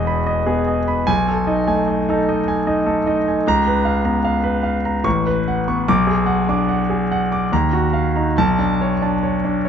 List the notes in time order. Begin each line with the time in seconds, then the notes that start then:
Already playing: E1 E2 B3 G#4 D#5 B5
0.07 B5
0.27 D#5
0.46 B3 G#4
0.68 D#5
0.88 B5
1.07 B1 G#5
1.29 A4
1.47 D#4 D#5
1.67 A3 G#5
1.88 D#5
2.09 D#4 A4
2.29 D#5
2.48 G#5
2.67 D#4 D#5
2.86 A3 A4
3.06 D#4 D#5
3.28 G#5
3.47 C#2 A#5
3.67 B4
3.85 F5
4.05 B3 A#5
4.24 F5
4.44 B4
4.63 F5
4.85 A#5
5.04 A1 C#6
5.27 B4
5.48 F#5
5.68 B3 C#6
5.88 B1 D6
6.07 G#4
6.26 F#5
6.49 D4 D6
6.69 F#5
6.90 G#4
7.12 F#5
7.32 D6
7.52 D#2 A#5
7.73 F#4
7.93 F5
8.16 D#4 A#5
8.38 B1 A5
8.59 D4
8.81 C#5
9.02 D4 A5
9.23 C#5
9.45 D4
9.65 C#5